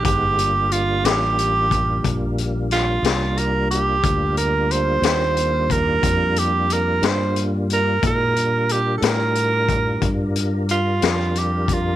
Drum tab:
HH |xxxxxxxxxxxx|xxxxxxxxxxxx|xxxxxxxxxxxx|
SD |---o----oo--|---o-----o--|---o-----o--|
BD |o----oo-----|o----oo-----|o----oo----o|